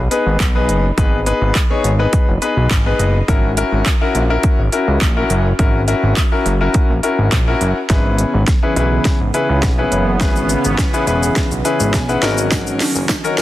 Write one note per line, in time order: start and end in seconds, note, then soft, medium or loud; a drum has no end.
0.11 0.41 B3 medium
0.11 0.41 D#4 medium
0.11 0.41 G#4 medium
0.11 0.41 B4 medium
0.11 closed hi-hat medium
0.26 0.37 G#1 medium
0.40 0.70 B1 loud
0.40 kick loud
0.40 clap loud
0.40 closed hi-hat medium
0.55 0.85 B3 medium
0.55 0.85 D#4 medium
0.55 0.85 G#4 medium
0.55 0.85 B4 medium
0.69 0.92 F#1 loud
0.69 closed hi-hat medium
0.97 1.33 G#1 loud
0.97 1.18 B3 medium
0.97 1.18 D#4 medium
0.97 1.18 G#4 medium
0.97 1.18 B4 loud
0.97 kick loud
0.97 closed hi-hat medium
1.26 1.56 B3 medium
1.26 1.56 D#4 medium
1.26 1.56 G#4 medium
1.26 1.56 B4 loud
1.26 closed hi-hat medium
1.42 1.53 G#1 medium
1.55 kick loud
1.55 clap loud
1.55 closed hi-hat medium
1.70 1.90 B3 medium
1.70 1.90 D#4 medium
1.70 1.90 G#4 medium
1.70 1.90 C#5 medium
1.84 2.07 G#1 medium
1.84 closed hi-hat soft
1.99 2.29 B3 medium
1.99 2.29 D#4 medium
1.99 2.29 G#4 medium
1.99 2.29 B4 loud
2.13 kick loud
2.13 closed hi-hat medium
2.28 2.39 F#1 medium
2.42 2.71 B3 medium
2.42 2.71 D#4 medium
2.42 2.72 G#4 medium
2.42 2.72 B4 medium
2.42 2.69 B5 medium
2.42 closed hi-hat medium
2.57 2.68 B1 medium
2.71 2.94 G#1 medium
2.71 2.98 G#5 medium
2.71 kick loud
2.71 clap loud
2.71 closed hi-hat medium
2.86 3.15 B3 medium
2.86 3.15 D#4 medium
2.86 3.16 G#4 medium
2.86 3.16 B4 medium
2.99 3.22 F#1 loud
2.99 3.26 D#5 medium
2.99 closed hi-hat soft
3.28 3.63 G#1 loud
3.28 3.49 C#4 medium
3.28 3.49 E4 medium
3.28 3.49 F#4 medium
3.28 3.49 A#4 loud
3.28 kick loud
3.28 closed hi-hat medium
3.57 3.87 C#4 medium
3.57 3.87 E4 medium
3.57 3.87 F#4 medium
3.57 3.87 A#4 loud
3.57 closed hi-hat medium
3.72 3.83 G#1 loud
3.86 kick loud
3.86 clap loud
3.86 closed hi-hat medium
4.01 4.20 C#4 medium
4.01 4.20 E4 medium
4.01 4.21 F#4 medium
4.01 4.21 A#4 loud
4.15 4.38 A#1 medium
4.15 closed hi-hat soft
4.30 4.60 C#4 medium
4.30 4.60 E4 medium
4.30 4.60 F#4 medium
4.30 4.60 A#4 loud
4.43 kick loud
4.43 closed hi-hat medium
4.59 4.70 G#1 medium
4.72 5.02 C#4 medium
4.72 5.02 E4 medium
4.72 5.02 F#4 medium
4.72 5.02 A#4 medium
4.72 closed hi-hat medium
4.88 4.99 C#2 medium
5.01 5.24 A#1 loud
5.01 kick loud
5.01 clap loud
5.01 closed hi-hat medium
5.16 5.46 C#4 medium
5.16 5.46 E4 medium
5.16 5.46 F#4 medium
5.16 5.46 A#4 loud
5.30 5.53 F#1 loud
5.30 closed hi-hat medium
5.59 5.94 G#1 loud
5.59 5.79 C#4 medium
5.59 5.79 E4 medium
5.59 5.79 F#4 medium
5.59 5.79 A#4 medium
5.59 kick loud
5.59 closed hi-hat medium
5.88 6.17 C#4 medium
5.88 6.17 E4 medium
5.88 6.17 F#4 medium
5.88 6.18 A#4 medium
5.88 closed hi-hat medium
6.03 6.14 G#1 loud
6.17 kick loud
6.17 clap loud
6.17 closed hi-hat medium
6.32 6.51 C#4 medium
6.32 6.51 E4 medium
6.32 6.51 F#4 medium
6.32 6.51 A#4 loud
6.46 6.69 F#1 medium
6.46 closed hi-hat medium
6.61 6.90 C#4 medium
6.61 6.90 E4 medium
6.61 6.90 F#4 medium
6.61 6.91 A#4 loud
6.74 kick loud
6.74 closed hi-hat medium
6.90 7.01 A#1 medium
7.03 7.33 C#4 medium
7.03 7.33 E4 medium
7.03 7.33 F#4 medium
7.03 7.33 A#4 medium
7.03 closed hi-hat medium
7.19 7.29 G#1 medium
7.32 7.55 A#1 loud
7.32 kick loud
7.32 clap loud
7.32 closed hi-hat medium
7.47 7.77 C#4 medium
7.47 7.77 E4 medium
7.47 7.77 F#4 medium
7.47 7.77 A#4 medium
7.61 7.73 F#1 medium
7.61 closed hi-hat medium
7.90 8.25 G#1 loud
7.90 12.19 C#3 medium
7.90 12.19 E3 medium
7.90 12.19 B3 medium
7.90 8.40 C#4 medium
7.90 8.40 E4 medium
7.90 8.40 G#4 medium
7.90 8.40 B4 medium
7.90 kick loud
7.90 snare medium
7.90 closed hi-hat medium
8.18 closed hi-hat medium
8.34 8.45 G#1 medium
8.47 kick loud
8.47 snare medium
8.47 closed hi-hat medium
8.63 8.72 C#4 medium
8.63 8.72 E4 medium
8.63 8.72 G#4 medium
8.63 8.72 B4 medium
8.76 8.99 B1 medium
8.76 9.16 C#4 medium
8.76 9.16 E4 medium
8.76 9.16 G#4 medium
8.76 9.17 B4 medium
8.76 closed hi-hat soft
9.05 kick loud
9.05 snare medium
9.05 closed hi-hat medium
9.21 9.31 G#1 medium
9.34 9.64 C#4 medium
9.34 9.64 E4 medium
9.34 9.64 G#4 medium
9.34 9.64 B4 medium
9.34 closed hi-hat medium
9.49 9.64 C#2 medium
9.63 9.86 B1 loud
9.63 kick loud
9.63 snare medium
9.63 closed hi-hat medium
9.78 10.08 C#4 medium
9.78 10.08 E4 medium
9.78 10.08 G#4 medium
9.78 10.08 B4 medium
9.92 10.22 F#1 medium
9.92 closed hi-hat medium
10.20 10.56 G#1 loud
10.20 10.70 C#4 medium
10.20 10.70 E4 medium
10.20 10.70 G#4 medium
10.20 10.70 B4 loud
10.20 kick loud
10.20 snare medium
10.20 closed hi-hat medium
10.20 shaker medium
10.36 shaker medium
10.49 closed hi-hat medium
10.49 shaker medium
10.65 10.76 G#1 medium
10.65 shaker medium
10.78 kick loud
10.78 snare medium
10.78 closed hi-hat medium
10.78 shaker medium
10.93 11.03 C#4 medium
10.93 11.03 E4 medium
10.93 11.03 G#4 medium
10.93 11.03 B4 medium
10.93 shaker medium
11.07 11.30 E1 loud
11.07 11.47 C#4 medium
11.07 11.47 E4 medium
11.07 11.47 G#4 medium
11.07 11.47 B4 loud
11.07 closed hi-hat soft
11.07 shaker medium
11.23 shaker medium
11.36 kick loud
11.36 snare medium
11.36 closed hi-hat medium
11.36 shaker medium
11.51 11.62 B1 medium
11.51 shaker medium
11.65 11.94 C#4 medium
11.65 11.94 E4 medium
11.65 11.94 G#4 medium
11.65 11.95 B4 medium
11.65 closed hi-hat medium
11.65 shaker medium
11.80 11.95 G#1 medium
11.80 shaker medium
11.93 12.17 B1 medium
11.93 12.08 G#5 medium
11.93 kick loud
11.93 snare medium
11.93 closed hi-hat medium
11.93 shaker medium
12.09 12.21 C#4 medium
12.09 12.22 E4 medium
12.09 12.23 G#4 medium
12.09 12.23 B4 medium
12.09 12.48 F#5 medium
12.09 shaker soft
12.22 12.81 G#1 loud
12.22 13.42 D#3 medium
12.22 13.42 F#3 medium
12.22 13.03 C#4 medium
12.22 13.42 C#4 medium
12.22 13.04 D#4 medium
12.22 13.04 F#4 medium
12.22 13.04 A#4 loud
12.22 snare medium
12.22 closed hi-hat medium
12.22 shaker medium
12.38 shaker medium
12.51 kick loud
12.51 snare medium
12.51 closed hi-hat medium
12.51 tambourine medium
12.51 shaker medium
12.67 shaker medium
12.80 snare medium
12.80 open hi-hat medium
12.80 tambourine soft
12.80 shaker medium
12.95 13.06 F#1 medium
12.95 shaker medium
13.09 kick loud
13.09 snare medium
13.09 closed hi-hat medium
13.09 tambourine medium
13.09 shaker medium
13.24 13.33 C#4 medium
13.24 13.34 D#4 medium
13.24 13.34 F#4 medium
13.24 13.34 A#4 medium
13.24 shaker medium
13.37 13.42 F#1 medium
13.37 13.42 C#4 medium
13.37 13.42 D#4 medium
13.37 13.42 F#4 medium
13.37 13.42 A#4 loud
13.37 snare medium
13.37 open hi-hat medium
13.37 tambourine medium
13.37 shaker medium